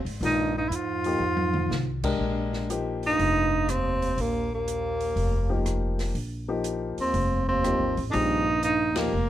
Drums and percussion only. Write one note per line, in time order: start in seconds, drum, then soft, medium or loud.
0.06 open hi-hat soft
0.23 open hi-hat soft
0.72 closed hi-hat soft
1.04 open hi-hat soft
1.37 high tom soft
1.54 mid tom medium
1.71 snare soft
2.04 kick medium
2.04 crash medium
2.53 snare soft
2.70 closed hi-hat soft
3.03 open hi-hat soft
3.19 open hi-hat soft
3.69 cross-stick soft
3.69 closed hi-hat soft
4.02 open hi-hat soft
4.18 open hi-hat soft
4.68 closed hi-hat soft
5.00 open hi-hat soft
5.17 open hi-hat soft
5.66 cross-stick medium
5.66 closed hi-hat soft
5.99 snare soft
5.99 open hi-hat soft
6.15 open hi-hat soft
6.64 closed hi-hat soft
6.98 open hi-hat soft
7.14 open hi-hat soft
7.64 cross-stick medium
7.64 closed hi-hat soft
7.97 open hi-hat soft
8.13 open hi-hat soft
8.63 closed hi-hat soft
8.96 snare medium
8.96 ride medium